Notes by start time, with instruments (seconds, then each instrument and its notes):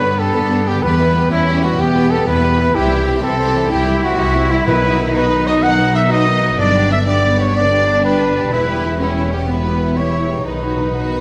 Already playing: double bass section G2, harp G2 D3 B3 B4 G5, cello section B3, violin section B4, trumpet B4
0.02 viola section D3 D4, violin section B3 B4, harp D4
0.10 harp G4
0.18 viola section G3 B3, violin section D4 G4 A4, trumpet A4, harp B4
0.26 harp D5
0.34 double bass section G2, viola section D3 D4, violin section B3 B4, harp B5
0.42 harp D5
0.51 viola section G3 B3, violin section D4 G4, harp B4
0.66 viola section D3 D4, harp B3, violin section B3 G4 B4, trumpet G4
0.74 harp D3
0.82 harp E2, double bass section E2, viola section G3 B3, violin section G4 B4, trumpet B4
0.91 harp B3
0.99 viola section E3 G3, harp E4, violin section E4 B4
1.15 viola section G3 B3, violin section G4, harp B4
1.24 harp E5
1.31 double bass section E2, viola section E3 G3, cello section C#4, trumpet E4, violin section E4 B4
1.47 viola section G3 B3, violin section G4, harp B4
1.63 viola section E3 G3, harp B3, violin section E4 F#4 B4, trumpet F#4
1.72 harp B2
1.77 double bass section E2, viola section G3 B3, cello section B3, harp B3, violin section G4, trumpet G4
1.87 harp B2
1.95 viola section E3 G3, harp E4, violin section E4 B4
2.10 viola section G3 B3, violin section G4 A4, trumpet A4, harp B4
2.20 harp E5
2.27 double bass section E2, viola section E3 G3, violin section E4 B4, trumpet B4
2.36 harp E5
2.41 viola section G3 B3, violin section G4, harp B4
2.58 viola section E3 G3, harp B3, violin section E4 B4
2.68 harp B2
2.74 double bass section C2, harp C3, viola section G3 C4, cello section E4, violin section E4 G4, trumpet G4
2.83 harp C4
2.90 viola section E3 G3, harp E4, violin section E4 G4
2.99 harp C4
3.05 viola section G3 C4, violin section E4 G4, harp C5
3.16 harp E5
3.21 double bass section C2, viola section E3 G3, cello section C4, violin section E4 G4 A4, trumpet A4, harp C5
3.32 harp E5
3.39 viola section G3 C4, violin section E4 G4, harp C5
3.47 harp E4
3.54 viola section E3 G3, harp C4, violin section E4 G4
3.63 harp G3
3.70 double bass section C2, viola section G3 C4, harp C4, cello section E4, violin section E4 G4, trumpet G4
3.79 harp G3
3.86 viola section E3 G3, harp E4, violin section E4 G4
3.95 harp C4
4.02 viola section G3 C4, violin section E4 F#4 G4, trumpet F#4, harp C5
4.11 harp E5
4.18 double bass section C2, viola section E3 G3, violin section E4 G4, cello section E4, harp C5
4.27 harp E5
4.33 viola section G3 C4, violin section E4 G4, harp C5
4.43 harp E4
4.49 viola section E3 G3, harp C4, violin section E4 G4, trumpet E4
4.60 harp G3
4.65 double bass section B1, timpani B2, harp B2, viola section D#3 B3, violin section D#4 B4, trumpet B4
4.75 harp B3
4.82 viola section F#3 D#4, violin section B3 F#4
4.91 harp F#4
4.98 viola section D#3 B3, violin section D#4, harp B4
5.07 harp D#5
5.13 viola section F#3 D#4, violin section B3 F#4 B4, cello section D#4, trumpet B4, harp F#5
5.23 harp D#5
5.29 viola section D#3 B3, violin section D#4
5.38 harp F#4
5.47 viola section F#3 D#4, violin section B3 F#4 D#5, harp B3, trumpet D#5
5.62 viola section D#3 B3, harp B3, violin section D#4 F#5, trumpet F#5
5.71 harp F#3
5.78 viola section F#3 D#4, violin section B3 F#4, harp D#4
5.86 harp F#4
5.94 viola section D#3 B3, violin section D#4 E5, harp B4, trumpet E5
6.02 harp D#5
6.09 viola section F#3 D#4, violin section B3 F#4 D#5, trumpet D#5, harp F#5
6.19 harp D#5
6.26 viola section D#3 B3, violin section D#4, harp B4
6.34 harp F#4
6.42 viola section F#3 D#4, harp B3, violin section B3 F#4
6.50 harp F#3
6.57 double bass section G1, harp G2, viola section D3 B3, cello section D4, violin section D4 D5, trumpet D5
6.66 harp B3
6.74 viola section G3 D4, violin section B3 G4, harp D4
6.82 harp G4
6.90 viola section D3 B3, violin section D4 E5, harp B4, trumpet E5
6.98 harp D5
7.05 viola section G3 D4, violin section B3 G4 D5, cello section B3, trumpet D5, harp G5
7.22 viola section D3 B3, violin section D4, harp B4
7.30 harp G4
7.39 viola section G3 D4, harp B3, violin section B3 G4 C#5, trumpet C#5
7.47 harp D3
7.53 viola section D3 B3, harp B3, violin section D4 D5, cello section D4, trumpet D5
7.63 harp D3
7.71 viola section G3 D4, violin section B3 G4, harp D4
7.79 harp G4
7.87 viola section D3 B3, violin section D4, harp B4
8.02 viola section G3 D4, violin section B3 G4 B4, trumpet B4
8.11 harp D5
8.19 viola section D3 B3, violin section D4, harp B4
8.28 harp G4
8.35 viola section G3 D4, harp B3, violin section B3 G4
8.44 harp D3
8.51 double bass section E1, harp E2, viola section E3 B3, violin section E4 B4, cello section E4, trumpet B4
8.60 harp B3
8.67 viola section G3, violin section B3 G4, harp E4
8.76 harp G4
8.83 viola section E3 B3, violin section E4
8.93 harp E5
8.99 viola section G3, violin section B3 E4 G4, cello section C#4, trumpet E4, harp G5
9.08 harp E5
9.15 viola section E3 B3, violin section E4, harp B4
9.24 harp G4
9.30 viola section G3, harp B3, violin section B3 G4, trumpet G4
9.35 violin section G4
9.41 harp B2
9.46 viola section E3 B3, cello section B3, harp B3, violin section E4 B4, trumpet B4
9.57 harp B2
9.64 viola section G3, violin section B3 G4, harp E4
9.74 harp G4
9.80 viola section E3 B3, violin section E4, harp B4
9.89 harp E5
9.96 viola section G3, violin section B3 G4 C#5, cello section E4, trumpet C#5, harp G5
10.05 harp E5
10.13 viola section E3 B3, violin section E4, harp B4
10.21 harp G4
10.29 viola section G3, harp B3, violin section B3 G4
10.38 harp B2
10.45 double bass section B1, harp B2, timpani B2, viola section D#3 B3, cello section D#4, violin section D#4 B4, trumpet B4
10.53 timpani B2, harp B3
10.61 timpani B2, viola section F#3 D#4, violin section B3 F#4, harp D#4
10.69 timpani B2, harp F#4
10.76 timpani B2, viola section D#3 B3, violin section D#4, harp B4
10.83 timpani B2, harp D#5
10.92 timpani B2, viola section F#3 D#4, violin section F#4, harp F#5
11.00 timpani B2, harp D#5
11.06 timpani B2, viola section D#3 B3, harp B4
11.14 timpani B2, harp F#4